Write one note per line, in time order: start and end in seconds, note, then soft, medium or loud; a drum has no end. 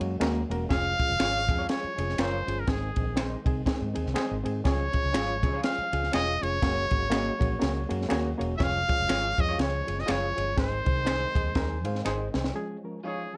0.00 0.16 F#2 loud
0.00 0.69 F#3 medium
0.00 0.15 G#3 loud
0.00 0.69 G#3 medium
0.00 0.15 A#3 medium
0.00 0.69 A#3 medium
0.00 0.15 C#4 medium
0.00 0.15 F#4 medium
0.00 0.16 C#5 loud
0.00 ride medium
0.20 0.43 D#2 medium
0.20 0.42 G#3 loud
0.20 0.42 A#3 loud
0.20 0.38 A#3 medium
0.20 0.42 C#4 loud
0.20 0.42 F#4 loud
0.20 0.39 F#4 medium
0.20 0.39 G#4 medium
0.20 0.43 A#4 loud
0.20 finger snap loud
0.20 snare loud
0.20 ride medium
0.49 0.66 E1 loud
0.49 0.65 G#3 medium
0.49 0.65 A#3 medium
0.49 0.65 C#4 medium
0.49 0.65 F#4 medium
0.49 0.65 A#4 loud
0.49 ride medium
0.69 0.93 F1 loud
0.69 2.66 F3 medium
0.69 2.66 G#3 medium
0.69 0.91 C#4 loud
0.69 2.66 C#4 medium
0.69 0.91 F4 loud
0.69 0.92 G#4 loud
0.69 1.66 F5 loud
0.69 kick loud
0.69 snare loud
0.69 ride medium
0.99 1.14 C#4 medium
0.99 1.14 F4 medium
0.99 1.15 G#4 medium
0.99 kick medium
0.99 ride medium
1.10 1.17 F1 medium
1.19 1.50 G#1 loud
1.19 1.41 C#4 medium
1.19 1.37 F4 medium
1.19 1.41 F4 loud
1.19 1.41 G#4 loud
1.19 1.37 G#4 medium
1.19 1.38 C#5 loud
1.19 finger snap loud
1.19 snare loud
1.19 ride medium
1.49 1.64 F2 loud
1.49 1.64 C#4 medium
1.49 1.64 F4 medium
1.49 1.64 G#4 medium
1.49 kick loud
1.49 ride medium
1.59 1.69 F4 medium
1.59 1.69 G#4 medium
1.59 1.68 C#5 medium
1.69 1.90 C#4 medium
1.69 1.91 F4 medium
1.69 1.91 G#4 medium
1.69 2.22 C#5 medium
1.69 snare loud
1.69 ride medium
1.84 muted fingered electric bass stroke medium
1.98 2.14 F1 medium
1.98 2.13 C#4 medium
1.98 2.14 F4 medium
1.98 2.14 G#4 medium
1.98 ride medium
2.09 snare soft
2.18 2.41 F#1 loud
2.18 2.40 C#4 loud
2.18 2.36 F4 medium
2.18 2.40 F4 medium
2.18 2.36 G#4 medium
2.18 2.40 A#4 loud
2.18 2.61 C5 medium
2.18 2.37 C#5 loud
2.18 finger snap medium
2.18 snare loud
2.18 ride medium
2.47 2.63 G1 medium
2.47 2.62 C#4 medium
2.47 2.63 F4 medium
2.47 2.63 G#4 medium
2.47 ride medium
2.60 2.71 A#4 medium
2.67 2.90 G#1 loud
2.67 4.64 D#3 medium
2.67 8.56 G#3 medium
2.67 2.89 C4 loud
2.67 4.63 C4 medium
2.67 2.89 D#4 medium
2.67 2.90 G#4 loud
2.67 3.18 G#4 medium
2.67 kick loud
2.67 snare loud
2.67 ride medium
2.96 3.35 A#1 medium
2.96 3.11 C4 medium
2.96 3.12 D#4 medium
2.96 3.12 G#4 medium
2.96 kick loud
2.96 ride medium
3.16 3.38 C4 medium
3.16 3.34 D#4 medium
3.16 3.38 D#4 medium
3.16 3.38 G#4 loud
3.16 3.35 G#4 medium
3.16 3.35 C5 loud
3.16 finger snap loud
3.16 snare loud
3.16 ride medium
3.45 3.62 C2 medium
3.45 3.61 C4 medium
3.45 3.61 D#4 medium
3.45 3.61 G#4 loud
3.45 kick loud
3.45 ride medium
3.66 3.87 C4 medium
3.66 3.88 D#4 medium
3.66 3.88 G#4 loud
3.66 kick loud
3.66 snare loud
3.66 ride medium
3.82 3.93 G#2 loud
3.94 4.04 D#2 medium
3.94 4.09 C4 medium
3.94 4.10 D#4 medium
3.94 4.10 G#4 loud
3.94 ride medium
4.06 4.14 C2 medium
4.06 snare soft
4.14 4.36 C4 loud
4.14 4.37 D#4 loud
4.14 4.33 D#4 medium
4.14 4.37 G#4 loud
4.14 4.33 G#4 medium
4.14 4.34 C5 medium
4.14 finger snap loud
4.14 snare medium
4.14 ride medium
4.31 4.42 G#1 medium
4.44 4.61 G#2 medium
4.44 4.59 C4 loud
4.44 4.59 D#4 medium
4.44 4.60 G#4 loud
4.44 ride medium
4.64 4.88 C#2 medium
4.64 6.60 F3 medium
4.64 4.86 C#4 loud
4.64 6.60 C#4 medium
4.64 4.86 F4 loud
4.64 4.87 G#4 loud
4.64 5.61 C#5 loud
4.64 kick loud
4.64 snare loud
4.64 ride medium
4.93 5.08 C#4 medium
4.93 5.09 F4 medium
4.93 5.09 G#4 medium
4.93 kick loud
4.93 ride medium
5.04 5.12 C#2 medium
5.13 5.45 G#1 medium
5.13 5.35 C#4 loud
5.13 5.31 F4 medium
5.13 5.35 F4 medium
5.13 5.32 G#4 medium
5.13 5.36 G#4 loud
5.13 5.32 C#5 medium
5.13 finger snap loud
5.13 snare loud
5.13 ride medium
5.43 5.59 C#3 medium
5.43 5.58 C#4 medium
5.43 5.58 F4 medium
5.43 5.58 G#4 loud
5.43 kick loud
5.43 ride medium
5.53 5.64 F4 medium
5.53 5.63 G#4 medium
5.53 5.63 C#5 medium
5.63 5.84 C#4 medium
5.63 5.85 F4 medium
5.63 5.85 G#4 medium
5.63 6.10 F5 loud
5.63 snare loud
5.63 ride medium
5.78 muted fingered electric bass stroke soft
5.92 6.09 C#2 loud
5.92 6.07 C#4 medium
5.92 6.08 F4 medium
5.92 6.08 G#4 medium
5.92 ride medium
6.03 snare soft
6.12 6.36 E1 medium
6.12 6.34 C#4 loud
6.12 6.34 F4 medium
6.12 6.31 F4 loud
6.12 6.35 G#4 loud
6.12 6.31 G#4 medium
6.12 6.31 C#5 loud
6.12 6.44 D#5 loud
6.12 finger snap loud
6.12 snare medium
6.12 ride medium
6.41 6.58 F1 medium
6.41 6.57 C#4 medium
6.41 6.57 F4 medium
6.41 6.57 G#4 medium
6.41 7.91 C#5 loud
6.41 ride medium
6.62 6.85 F#1 loud
6.62 8.58 F#3 medium
6.62 6.84 A#3 loud
6.62 8.58 A#3 medium
6.62 6.84 C#4 medium
6.62 6.84 F#4 medium
6.62 6.84 G#4 medium
6.62 6.84 C#5 loud
6.62 kick loud
6.62 snare loud
6.62 ride medium
6.91 7.29 G#1 medium
6.91 7.06 A#3 medium
6.91 7.06 C#4 medium
6.91 7.06 F#4 medium
6.91 7.06 G#4 medium
6.91 7.07 C#5 medium
6.91 kick loud
6.91 ride medium
7.10 7.32 A#3 loud
7.10 7.29 A#3 medium
7.10 7.32 C#4 loud
7.10 7.32 F#4 loud
7.10 7.29 F#4 medium
7.10 7.33 G#4 loud
7.10 7.30 G#4 loud
7.10 7.33 D#5 loud
7.10 finger snap loud
7.10 snare loud
7.10 ride medium
7.39 7.56 A#1 loud
7.39 7.55 A#3 medium
7.39 7.55 C#4 medium
7.39 7.55 F#4 medium
7.39 7.55 G#4 medium
7.39 7.56 C#5 loud
7.39 kick loud
7.39 ride medium
7.59 7.84 C#2 medium
7.59 7.81 A#3 loud
7.59 7.81 C#4 loud
7.59 7.82 F#4 medium
7.59 7.82 G#4 medium
7.59 7.82 C#5 loud
7.59 snare loud
7.59 ride medium
7.89 8.06 F#2 loud
7.89 8.04 A#3 loud
7.89 8.04 C#4 medium
7.89 8.05 F#4 medium
7.89 8.05 G#4 medium
7.89 8.05 C#5 loud
7.89 ride medium
8.01 snare soft
8.09 8.33 D#2 medium
8.09 8.31 A#3 loud
8.09 8.28 A#3 medium
8.09 8.31 C#4 loud
8.09 8.31 F#4 loud
8.09 8.28 F#4 medium
8.09 8.31 G#4 loud
8.09 8.29 G#4 medium
8.09 8.31 C#5 loud
8.09 finger snap loud
8.09 snare loud
8.09 ride medium
8.38 8.55 E1 medium
8.38 8.53 A#3 loud
8.38 8.54 C#4 medium
8.38 8.54 F#4 medium
8.38 8.54 G#4 medium
8.38 8.54 C#5 loud
8.38 ride medium
8.57 8.83 F1 loud
8.57 10.55 F3 medium
8.57 12.51 G#3 medium
8.57 10.55 C#4 medium
8.57 8.80 F4 medium
8.57 8.81 G#4 medium
8.57 8.81 C#5 loud
8.57 8.65 E5 medium
8.57 kick loud
8.57 snare loud
8.57 ride medium
8.63 9.42 F5 loud
8.88 9.03 F4 medium
8.88 9.04 G#4 medium
8.88 9.04 C#5 medium
8.88 kick loud
8.88 ride medium
9.00 9.07 F1 medium
9.09 9.32 G#1 medium
9.09 9.30 F4 loud
9.09 9.26 F4 loud
9.09 9.30 G#4 medium
9.09 9.27 G#4 medium
9.09 9.31 C#5 loud
9.09 9.27 C#5 medium
9.09 finger snap loud
9.09 snare loud
9.09 ride medium
9.38 9.54 F2 loud
9.38 9.53 F4 medium
9.38 9.53 G#4 medium
9.38 9.54 C#5 medium
9.38 9.60 D#5 loud
9.38 kick loud
9.38 ride medium
9.49 9.59 F4 medium
9.49 9.58 G#4 medium
9.49 9.58 C#5 medium
9.58 9.81 C#2 loud
9.58 9.79 F4 medium
9.58 9.80 G#4 medium
9.58 9.80 C#5 medium
9.58 10.01 C#5 medium
9.58 snare loud
9.58 ride medium
9.87 10.04 F#1 medium
9.87 10.02 F4 medium
9.87 10.02 G#4 medium
9.87 10.02 C#5 medium
9.87 ride medium
9.99 10.12 D#5 loud
9.99 snare soft
10.06 10.31 F#1 medium
10.06 10.28 F4 loud
10.06 10.25 F4 medium
10.06 10.28 G#4 medium
10.06 10.25 G#4 medium
10.06 10.29 C#5 loud
10.06 10.26 C#5 medium
10.06 finger snap loud
10.06 snare medium
10.06 ride medium
10.11 10.59 C#5 loud
10.36 10.53 G1 medium
10.36 10.51 F4 medium
10.36 10.51 G#4 medium
10.36 10.52 C#5 medium
10.36 ride medium
10.56 10.80 G#1 loud
10.56 12.53 D#3 medium
10.56 12.53 C4 medium
10.56 10.78 D#4 medium
10.56 10.78 G#4 medium
10.56 10.79 C5 loud
10.56 12.03 C5 medium
10.56 kick loud
10.56 snare loud
10.56 ride medium
10.85 11.24 C2 medium
10.85 11.01 D#4 medium
10.85 11.01 G#4 medium
10.85 11.01 C5 medium
10.85 kick loud
10.85 ride medium
11.05 11.27 D#4 medium
11.05 11.24 D#4 medium
11.05 11.27 G#4 medium
11.05 11.24 G#4 medium
11.05 11.28 C5 loud
11.05 11.25 C5 loud
11.05 finger snap loud
11.05 snare loud
11.05 ride medium
11.35 11.51 D#2 medium
11.35 11.50 D#4 medium
11.35 11.50 G#4 medium
11.35 11.51 D#5 loud
11.35 11.54 C6 medium
11.35 kick loud
11.35 ride medium
11.55 11.86 D#2 medium
11.55 11.77 D#4 medium
11.55 11.77 G#4 medium
11.55 11.78 A#4 loud
11.55 11.83 G#5 medium
11.55 kick loud
11.55 snare loud
11.55 ride medium
11.85 12.01 G#2 loud
11.85 12.00 D#4 medium
11.85 12.00 G#4 medium
11.85 12.00 C5 loud
11.85 12.04 F5 medium
11.85 ride medium
11.95 snare soft
12.05 12.28 G#1 medium
12.05 12.23 D#4 medium
12.05 12.26 D#4 loud
12.05 12.23 G#4 medium
12.05 12.27 G#4 loud
12.05 12.27 C5 loud
12.05 12.24 C5 medium
12.05 12.52 D#5 medium
12.05 finger snap medium
12.05 snare medium
12.34 12.50 C2 medium
12.34 12.49 D#4 loud
12.34 12.49 G#4 medium
12.34 12.50 C5 loud
12.34 snare loud
12.44 snare medium
12.54 12.75 F3 loud
12.54 13.37 F3 medium
12.54 13.37 G#3 medium
12.54 12.76 G#3 loud
12.54 13.37 C#4 medium
12.54 12.76 C#4 medium
12.54 12.76 G#4 loud
12.84 12.99 F3 medium
12.84 12.99 G#3 medium
12.84 12.99 C#4 medium
12.84 12.99 A#4 medium
13.03 13.25 F3 medium
13.03 13.25 G#3 medium
13.03 13.26 C#4 medium
13.03 13.26 D#4 medium
13.03 13.21 F4 medium
13.03 13.22 G#4 medium
13.03 13.37 G#4 medium
13.03 13.22 C#5 medium
13.33 13.37 F3 medium
13.33 13.37 G#3 medium
13.33 13.37 C#4 medium